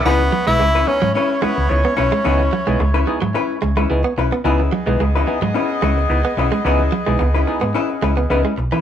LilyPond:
<<
  \new Staff \with { instrumentName = "Horn section" } { \time 4/4 \key cis \minor \tempo 4 = 109 <gis cis' e' b' cis'' e''>1~ | <gis cis' e' b' cis'' e''>2.~ <gis cis' e' b' cis'' e''>8 r8 | <b gis' dis''>1~ | <b gis' dis''>2.~ <b gis' dis''>8 r8 | }
  \new Staff \with { instrumentName = "Clav" } { \time 4/4 \key cis \minor <b dis' e' gis'>16 r8 <b dis' e' gis'>16 r8 <b dis' e' gis'>16 r16 <e' gis'>16 r16 <e' gis'>16 <e' gis'>16 <b dis' e' gis'>16 r8. | <b dis' e' gis'>16 r8 <b dis' e' gis'>16 r8 <b dis' e' gis'>16 r16 <e' gis'>16 r16 <e' gis'>16 <e' gis'>16 <b dis' e' gis'>16 r16 <e' gis'>16 r16 | <b dis' e' gis'>16 r8 <b dis' e' gis'>16 r8 <b dis' e' gis'>16 r16 <e' gis'>16 r16 <e' gis'>16 <e' gis'>16 <b dis' e' gis'>16 r16 <e' gis'>16 r16 | <b dis' e' gis'>16 r8 <b dis' e' gis'>16 r8 <b dis' e' gis'>16 r16 <e' gis'>16 r16 <e' gis'>16 <e' gis'>16 <b dis' e' gis'>16 r16 <e' gis'>16 r16 | }
  \new Staff \with { instrumentName = "Hollow-body jazz guitar" } { \time 4/4 \key cis \minor <cis' e' b'>8 r8. <cis' e' b'>16 r8 <cis' e' b'>16 r16 <cis' e' b'>16 r8. <cis' e' b'>16 r16 | <cis' e' b'>8 r8. <cis' e' b'>16 r8 <cis' e' b'>16 r8 <cis' e' b'>16 r8 <cis' e' b'>16 r16 | <cis' e' b'>8 r8. <cis' e' b'>16 r8 <cis' e' b'>16 r16 <cis' e' b'>16 r8. <cis' e' b'>16 r16 | <cis' e' b'>8 r8. <cis' e' b'>16 r8 <cis' e' b'>16 r16 <cis' e' b'>16 r16 <cis' e' b'>16 r8 <cis' e' b'>16 | }
  \new Staff \with { instrumentName = "Tenor saxophone" } { \time 4/4 \key cis \minor b8. e'8. cis'8 cis'8 b8 cis'8 cis'8~ | cis'4. r2 r8 | r1 | r1 | }
  \new Staff \with { instrumentName = "Clean electric guitar" } { \clef bass \time 4/4 \key cis \minor r8 fis16 gis16 gis16 r8 fis16 r8 gis16 r8 b16 r16 gis16 | r8 fis16 gis16 gis16 r8 fis16 r8 gis16 gis16 r16 b16 r16 b16 | r8 fis16 gis16 gis16 r8 fis16 r8 gis16 r8 b16 r16 gis16 | r8 fis16 gis16 b16 r8 b16 r8 gis16 b16 r16 gis16 r16 e16 | }
  \new Staff \with { instrumentName = "Fingered electric bass" } { \clef bass \time 4/4 \key cis \minor cis,8 r16 b,,16 cis,8 r16 gis,16 r8. cis,16 cis,16 r16 b,,16 r16 | cis,8 r16 b,,16 cis,8 r16 gis,16 r8 cis,8 cis,16 r16 b,,16 r16 | cis,8 r16 b,,16 cis,8 r16 gis,16 r8 cis,8 cis,16 r16 b,,16 r16 | cis,8 r16 b,,16 cis,8 r16 gis,16 r8 cis,8 cis,16 r16 b,,16 r16 | }
>>